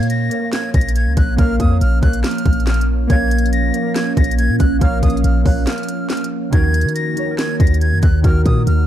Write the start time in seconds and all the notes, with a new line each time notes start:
Already playing: F3 A#3 C#4 A#4 C#5 F5
0.00 A#2, closed hi-hat
0.10 A#6, closed hi-hat
0.30 A#3 A#4 C#5, closed hi-hat
0.35 F5
0.40 A#3 A#4 C#5
0.45 F5
0.53 G#6, snare, clap, closed hi-hat
0.74 A#1 A#6, kick, closed hi-hat
0.81 closed hi-hat
0.89 closed hi-hat
0.96 G#6, closed hi-hat
1.06 C#2
1.17 A#1 F#6, kick, closed hi-hat
1.36 A#1 A#3 A#4 C#5 F6, kick, closed hi-hat
1.41 F5
1.60 F2 D#6, kick, closed hi-hat
1.68 A#3 A#4 C#5
1.73 F5
1.81 A#1 F6, closed hi-hat
2.00 A#1 A#3 A#4 C#5 F#6, kick, closed hi-hat
2.05 F5
2.13 closed hi-hat
2.24 F6, snare, clap, closed hi-hat
2.31 closed hi-hat
2.38 closed hi-hat
2.46 A#1, kick, closed hi-hat
2.53 closed hi-hat
2.60 closed hi-hat
2.67 F6, snare, clap, closed hi-hat
2.74 closed hi-hat
2.81 closed hi-hat
3.07 A#1 A#3 A#4 C#5 G#6, kick, closed hi-hat
3.12 F5
3.31 closed hi-hat
3.38 closed hi-hat
3.46 closed hi-hat
3.53 A#6, closed hi-hat
3.72 A#3 A#4 C#5, closed hi-hat
3.77 F5
3.82 A#3 A#4 C#5
3.87 F5
3.96 G#6, snare, clap, closed hi-hat
4.17 A#1 A#6, kick, closed hi-hat
4.24 closed hi-hat
4.31 closed hi-hat
4.38 G#6, closed hi-hat
4.49 A#2
4.59 A#1 F#6, kick, closed hi-hat
4.79 A#1 A#3 A#4 C#5 F6, kick, closed hi-hat
4.84 F5
5.03 A#1 D#6, kick, closed hi-hat
5.10 A#3 A#4, closed hi-hat
5.15 C#5 F5, closed hi-hat
5.24 A#1 F6, closed hi-hat
5.43 A#1 A#3 A#4 C#5 F#6, kick, open hi-hat
5.48 F5
5.67 F6, snare, clap, closed hi-hat
5.72 closed hi-hat
5.78 closed hi-hat
5.83 closed hi-hat
5.88 closed hi-hat
6.10 F6, snare, clap, closed hi-hat
6.17 closed hi-hat
6.24 closed hi-hat
6.50 D#2 D#3 A#3 D#4 F#4 G#6, kick, closed hi-hat
6.55 A#4
6.74 closed hi-hat
6.81 D#3, closed hi-hat
6.89 closed hi-hat
6.95 A#6, closed hi-hat
7.14 D#3 D#4 F#4, closed hi-hat
7.19 C#5
7.26 D#3 D#4 F#4
7.31 A#4
7.39 G#6, snare, clap, closed hi-hat
7.60 D#2 A#6, kick, closed hi-hat
7.67 closed hi-hat
7.74 closed hi-hat
7.81 G#6, closed hi-hat
7.92 F#2
8.03 D#2 F#6, kick, closed hi-hat
8.22 D#2 D#3 D#4 F#4 F6, kick, closed hi-hat
8.27 A#4
8.46 A#2 D#6, kick, closed hi-hat
8.54 D#3 D#4 F#4
8.59 A#4
8.67 D#2 F6, closed hi-hat